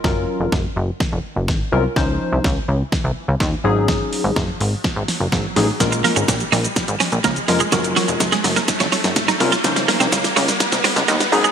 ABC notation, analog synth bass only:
X:1
M:4/4
L:1/16
Q:1/4=125
K:Db
V:1 name="Analog synth bass" clef=bass
G,,,3 F,,, G,,,2 G,,,2 z F,,, z G,,, A,,,2 C,,2 | D,,3 C,, D,,2 D,,2 z C,, z D,, E,,2 A,,,2- | A,,,3 A,,, G,,,2 A,,,2 z A,,, z G,,, A,,,2 =A,,,2 | B,,,3 A,,, B,,,2 B,,,2 z A,,, z B,,, D,,2 F,,,2 |
G,,,3 F,,, G,,,2 G,,,2 z F,,, z G,,, A,,,2 C,,2 | D,,3 C,, D,,2 D,,2 z C,, z D,, E,,2 A,,,2 |]